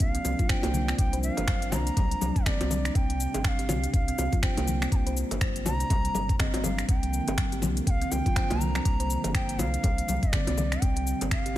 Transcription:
Already playing: F3 A#3 D4
0.00 C2 F5, kick, closed hi-hat, muted conga, shaker
0.15 C4, closed hi-hat, shaker
0.25 C2 C4, high bongo, low bongo, muted conga, shaker
0.39 F4, kick, closed hi-hat, high conga, shaker
0.49 C5 G5, finger snap, kick, closed hi-hat, shaker
0.63 C2 A#3, closed hi-hat, high bongo, low bongo, muted conga, shaker
0.74 high conga, low conga, shaker
0.88 C4, finger snap, muted conga, shaker
0.98 C2 G3 G5, kick, closed hi-hat, shaker
1.13 C5, closed hi-hat, muted conga, shaker
1.23 F5, shaker
1.37 G1, closed hi-hat, low bongo, shaker
1.48 C5, finger snap, kick, closed hi-hat, muted conga, high conga, shaker
1.62 closed hi-hat, shaker
1.72 C2 A#5, high bongo, muted conga, high conga, low conga, shaker
1.87 closed hi-hat, shaker
1.97 C2 G3, kick, closed hi-hat, low bongo, muted conga, high conga, shaker
2.11 closed hi-hat, shaker
2.21 C2 G3, low bongo, muted conga, high conga, shaker
2.36 kick, closed hi-hat, shaker
2.46 C4 D5, finger snap, kick, closed hi-hat, low bongo, low conga, shaker
2.61 C2 C4, closed hi-hat, high bongo, muted conga, shaker
2.70 G3, low bongo, high conga, low conga, shaker
2.85 finger snap, closed hi-hat, muted conga, shaker
2.95 C2 C3 G3 C4 G5, kick, closed hi-hat, shaker
3.10 closed hi-hat, muted conga
3.20 shaker
3.34 G1 C4, closed hi-hat, low bongo, shaker
3.44 F5 G5, finger snap, kick, closed hi-hat, muted conga, high conga, shaker
3.59 G4, closed hi-hat, shaker
3.69 C2, high bongo, muted conga, high conga, low conga, shaker
3.84 closed hi-hat, shaker
3.94 C2 F5, kick, closed hi-hat, muted conga, shaker
4.08 C4, closed hi-hat, shaker
4.18 C2 C4, high bongo, low bongo, muted conga, shaker
4.32 F4, kick, closed hi-hat, high conga, shaker
4.43 C5 G5, finger snap, kick, closed hi-hat, shaker
4.57 C2 A#3, closed hi-hat, high bongo, low bongo, muted conga, shaker
4.67 high conga, low conga, shaker
4.82 C4, finger snap, muted conga, shaker
4.92 C2 G3 A#5, kick, closed hi-hat, shaker
4.96 G5
5.07 C5, closed hi-hat, muted conga, shaker
5.17 shaker
5.31 G1, closed hi-hat, low bongo, shaker
5.41 C5, finger snap, kick, closed hi-hat, muted conga, high conga, shaker
5.56 closed hi-hat, shaker
5.65 C2 A#5, high bongo, muted conga, high conga, low conga, shaker
5.80 closed hi-hat, shaker
5.90 C2 G3, kick, closed hi-hat, low bongo, muted conga, high conga, shaker
6.05 closed hi-hat, shaker
6.14 G1 G3, low bongo, muted conga, high conga, shaker
6.29 kick, closed hi-hat, shaker
6.39 C4 D#5, finger snap, kick, closed hi-hat, low bongo, low conga, shaker
6.54 G1 C4, closed hi-hat, high bongo, muted conga, shaker
6.64 G3 F5, low bongo, high conga, low conga, shaker
6.78 finger snap, closed hi-hat, muted conga, shaker
6.89 C2 D3 F3 A#3 C4 G5, kick, closed hi-hat, shaker
7.03 closed hi-hat, muted conga
7.13 shaker
7.28 G1 C4, closed hi-hat, low bongo, shaker
7.38 finger snap, kick, closed hi-hat, muted conga, high conga, shaker
7.52 G4, closed hi-hat, shaker
7.62 C2, high bongo, muted conga, high conga, low conga, shaker
7.77 closed hi-hat, shaker
7.87 C2 F5 G5, kick, closed hi-hat, muted conga, shaker
8.02 C4, closed hi-hat, shaker
8.11 C2 C4 G5, high bongo, low bongo, muted conga, shaker
8.26 F4, kick, closed hi-hat, high conga, shaker
8.36 C5, finger snap, kick, closed hi-hat, shaker
8.50 C2 A#3, closed hi-hat, high bongo, low bongo, muted conga, shaker
8.60 A#5, high conga, low conga, shaker
8.75 C4, finger snap, muted conga, shaker
8.85 C2 G3, kick, closed hi-hat, shaker
9.00 C5, closed hi-hat, muted conga, shaker
9.10 shaker
9.24 G1, closed hi-hat, low bongo, shaker
9.34 C5 G5, finger snap, kick, closed hi-hat, muted conga, high conga, shaker
9.49 closed hi-hat, shaker
9.59 C2 F5, high bongo, muted conga, high conga, low conga, shaker
9.74 closed hi-hat, shaker
9.83 C2 G3, kick, closed hi-hat, low bongo, muted conga, high conga, shaker
9.98 closed hi-hat, shaker
10.08 C2 G3, low bongo, muted conga, high conga, shaker
10.23 kick, closed hi-hat, shaker
10.33 C4 D5, finger snap, kick, closed hi-hat, low bongo, low conga, shaker
10.47 C2 C4, closed hi-hat, high bongo, muted conga, shaker
10.57 G3, low bongo, high conga, low conga, shaker
10.72 finger snap, closed hi-hat, muted conga, shaker
10.82 C2 C3 G3 C4 G5, kick, closed hi-hat, shaker
10.96 closed hi-hat, muted conga
11.07 shaker
11.21 G1 C4, closed hi-hat, low bongo, shaker
11.31 F5, finger snap, kick, closed hi-hat, muted conga, high conga, shaker
11.46 G4, closed hi-hat, shaker

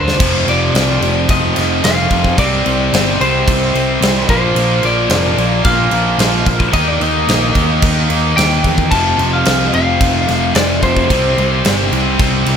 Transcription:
Already playing: D2 D3 A3 D4 C5
0.08 snare
0.19 F1 F2 C3 F3, kick, crash
0.46 F1 F2 C3 F3 D5, crash
0.73 C2 F2 C3 F3, snare, crash
1.01 F1 F2 C3 F3, crash
1.28 F1 F2 C3 F3 D#5, kick, crash
1.55 F1 F2 C3 F3, snare, crash
1.83 F1 F2 C3 F3 F5, snare, crash
2.10 F1 F2 C3 F3, kick, crash
2.24 kick
2.38 C2 C3 G3 C4 D5, kick, crash
2.66 C2 C3 G3 C4, crash
2.93 G1 C3 G3 C4, snare, crash
3.21 C2 C3 G3 C4 C5, crash
3.48 C2 C3 G3 C4, kick, crash
3.74 C2 C3 G3 C4, crash
4.01 C2 C3 G3 C4, snare, crash
4.29 A#1 A#2 F3 A#3 C5, kick, crash
4.55 A#1 A#2 F3 A#3, crash
4.83 A#1 A#2 F3 A#3 D5, crash
5.09 F1 A#2 F3 A#3, snare, crash
5.37 A#1 A#2 F3 A#3, crash
5.65 A#1 A#2 F3 A#3 F5, kick, crash
5.91 A#1 A#2 F3 A#3, crash
6.18 A#1 A#2 F3 A#3, snare, crash
6.46 A#1 A#2 F3 A#3, kick, crash
6.60 kick
6.73 D#2 D#3 A#3 D#4 D#5, kick, crash
6.87 D5
7.01 D#2 D#3 A#3 D#4 D#5, crash
7.27 A#1 D#3 A#3 D#4, snare, crash
7.55 D#2 D#3 A#3 D#4, kick, crash
7.82 D#2 D#3 A#3 D#4, kick, crash
8.09 D#2 D#3 A#3 D#4, crash
8.37 D#2 D#3 A#3 D#4 G5, snare, crash
8.64 E2 D#3 A#3 D#4, kick, crash
8.78 kick
8.91 F1 F2 C3 F3 A5, kick, crash
9.18 F1 F2 C3 F3, crash
9.33 F5
9.45 C2 F2 C3 F3, snare, crash
9.73 F1 F2 C3 F3 F5, crash
10.01 F1 F2 C3 F3, kick, crash
10.28 F1 F2 C3 F3, snare, crash
10.55 F1 F2 C3 F3 D5, snare, crash
10.83 F1 F2 C3 F3 C5, kick, crash
10.97 kick
11.10 C2 C3 G3 C4, kick, crash
11.38 C2 C3 G3 C4, crash
11.65 G1 C3 G3 C4, snare, crash
11.92 C2 C3 G3 C4, crash
12.19 C2 C3 G3 C4, kick, crash
12.46 C2 C3 G3 C4, crash

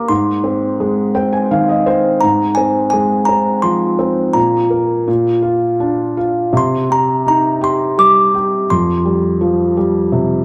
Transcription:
Already playing: A#3 G4 A#4
0.09 G#2 C6
0.44 C4
0.80 G#3
1.15 C4 G5
1.33 G#5
1.51 D#3 F5
1.69 D#5
1.86 C4 C5
2.21 G#2 A#5
2.55 C4 G#5
2.90 G#3 G#5
3.25 C4 A#5
3.62 F3 C6
3.99 C4
4.33 A#2 A#5
4.70 A#4
5.08 A#2
5.42 F4
5.80 D4
6.17 F4
6.53 C3
6.57 C6
6.90 G4 A#5
7.27 D#4 A#5
7.61 G4 C6
7.98 G3 D6
8.34 G4
8.70 F2 C6
9.05 G3
9.41 F3
9.77 G3
10.12 C3

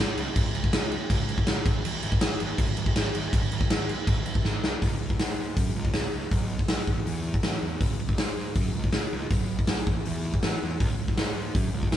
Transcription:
0.00 C#2
0.17 C#2, crash
0.36 C#2, kick, crash
0.54 C#2, crash
0.64 kick
0.73 C#2, snare, crash
0.92 crash
1.10 C#2, kick, crash
1.29 crash
1.38 kick
1.47 C#2, snare, crash
1.66 G#1, kick, crash
1.85 G#1, crash
2.03 G#1, crash
2.12 kick
2.21 G#1, snare, crash
2.40 G#1, crash
2.58 G#1, kick, crash
2.77 G#1, crash
2.86 kick
2.96 G#1, snare, crash
3.15 G#1, crash
3.33 G#1, kick, crash
3.52 G#1, crash
3.61 kick
3.70 G#1, snare, crash
3.89 crash
4.07 G#1, kick, crash
4.26 crash
4.35 kick
4.44 G#1, snare
4.64 C2, snare
4.82 C#2, kick, open hi-hat
5.01 C#2
5.10 kick
5.19 G#2, snare, open hi-hat
5.38 G#2
5.57 F#2, kick, open hi-hat
5.76 C#2
5.85 kick
5.94 C#2, snare, open hi-hat
6.13 C#2
6.31 B1, kick, open hi-hat
6.59 kick
6.68 B1, snare, open hi-hat
6.87 A1, kick
7.06 E2, open hi-hat
7.34 kick
7.43 A1, snare, open hi-hat
7.62 E2
7.81 C#2, kick, open hi-hat
7.99 C#2
8.09 kick
8.18 G#2, snare, open hi-hat
8.37 G#2
8.55 F#2, kick, open hi-hat
8.74 C#2
8.84 kick
8.93 C#2, snare, open hi-hat
9.13 C#2
9.30 B1, kick, open hi-hat
9.59 kick
9.67 B1, snare, open hi-hat
9.87 A1, kick
10.05 E2, open hi-hat
10.34 kick
10.43 A1, snare, open hi-hat
10.63 E2
10.80 C#2, kick, open hi-hat
10.99 C#2
11.08 kick
11.17 G#2, snare, open hi-hat
11.36 G#2
11.55 F#2, kick, open hi-hat
11.73 C#2
11.83 kick
11.91 C#2, snare, open hi-hat

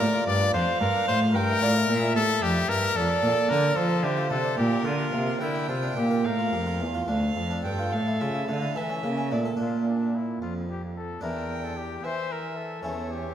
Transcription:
Already playing: A#4 D5
0.00 A2 G4
0.14 F4
0.27 G2 D5
0.41 F4
0.54 F2 D4 C5 F5
0.80 G2 A#4
0.94 D4
1.08 A2 C5
1.21 F4
1.34 G2 A#4 G5
1.49 E4
1.61 A2 F4 D5
1.76 E4
1.88 A#2 E5
2.03 E4
2.15 A2 G4 A4
2.29 E4
2.42 F2 D4 G4
2.55 E4
2.68 G2 A#4
2.82 G4
2.96 F2 A4 D5
3.09 A4
3.22 A#2 A#4
3.35 A4
3.49 D3 D4 A#4
3.61 A4
3.75 F3 A4 C5 D5
3.89 F4
4.03 D3 E4 G4
4.17 F4
4.30 C3 D4 A4
4.44 D5
4.57 A#2 G4 A#4
4.71 G4
4.85 D3 F4 A4
4.99 G4
5.13 C3 A#3
5.27 G4
5.40 D3 E4 A#4 G5
5.55 D4
5.68 C3 C4 F4
5.83 D4
5.96 A#2 A#3 G4
6.11 A#4
6.24 A2 A#4 F5
6.39 F4
6.53 F2 G4
6.67 F4
6.80 E2
6.94 F4
7.08 D2 D4 A4 F5
7.36 F2
7.51 D4
7.65 G2 G5
7.79 F4
7.93 A2 F5
8.07 E4
8.20 C#3 F4 E5
8.35 E4
8.49 D3 A3 F5
8.62 E4
8.76 E3 A4 E5
8.89 C#4
9.03 C#3 A#3
9.18 C#4
9.31 A#2 A3 D5
9.45 A4
9.57 A#2 D4 F4
9.89 D4
10.16 E4
10.42 F2 F4
10.70 G4
10.97 A4
11.21 E2 D4 E4 A#4 G5
11.64 A4
11.77 G4
12.04 E3 C5 E5
12.32 A#4
12.57 A4
12.83 E2 C#4 E4 C#5
13.11 G4

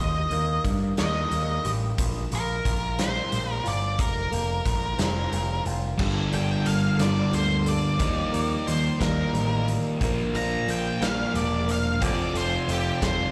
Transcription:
Already playing: D#2
0.00 D#3 D#5
0.31 D#2 A#3, closed hi-hat
0.64 G2 G4, kick, closed hi-hat
0.97 D#2 D#4 D#5, snare, closed hi-hat
1.31 D#2 A#3, closed hi-hat
1.65 A1 G4, closed hi-hat
1.98 A#1 A#2, kick, closed hi-hat
2.32 A#1 A#3 A#4, closed hi-hat
2.65 A#1 F4, kick, closed hi-hat
2.98 C4 C5, snare, closed hi-hat
3.31 A#1 A#3, closed hi-hat
3.51 A#4
3.64 G1 F4 D5, closed hi-hat
3.98 F1 F2 A#4, kick, closed hi-hat
4.31 F1 A#3, closed hi-hat
4.65 A#1 F4, kick, closed hi-hat
4.98 F1 C4, snare, closed hi-hat
5.31 F1 A#3, closed hi-hat
5.65 F1 F4, closed hi-hat
5.97 G1 G2 D3 G3 A#3 D4 A4, kick, crash
6.31 G1 G3 A#3 D4 A4 G5, closed hi-hat
6.63 G1 G3 A#3 D4 F5, closed hi-hat
6.67 A4
6.98 G1 G3 A#3 D4 A4 D5, snare, closed hi-hat
7.31 D2 G3 A#3 D4 A4 C5, closed hi-hat
7.65 G3 A#3 D4 A4 D5, closed hi-hat
7.98 D#2 D#3 F3 G3 A#3 D#4 A#4, kick, closed hi-hat
8.32 D#2 G3 D#4 A#4, closed hi-hat
8.66 D#2 F3 G3 D#4 A#4 C5, closed hi-hat
8.99 D#2 G3 D#4 A#4, kick, snare, closed hi-hat
9.32 A1 F3 G3 D#4 A#4, closed hi-hat
9.67 G3 D#4 A#4, closed hi-hat
10.00 A#1 A#2 D3 F3 A#3 D4 A#4, kick, closed hi-hat
10.33 A#1 F3 A#3 D4 A#4 A#5, closed hi-hat
10.67 A#1 F3 A#3 D4 A#4 G5, closed hi-hat
11.01 A#1 F3 A#3 D4 A#4 F5, snare, closed hi-hat
11.33 E1 F3 A#3 D4 A#4 D5, closed hi-hat
11.66 F3 A#3 D4 A#4, closed hi-hat
11.72 F5
12.00 F1 F2 C3 F3 C4 F4 A4, kick, closed hi-hat
12.04 F3 D5
12.34 F1 C4 F4 A4 C5, closed hi-hat
12.67 F1 F3 C4 F4 A4, closed hi-hat
12.71 G4
13.01 F1 C4 F4 A4 C5, kick, snare, closed hi-hat

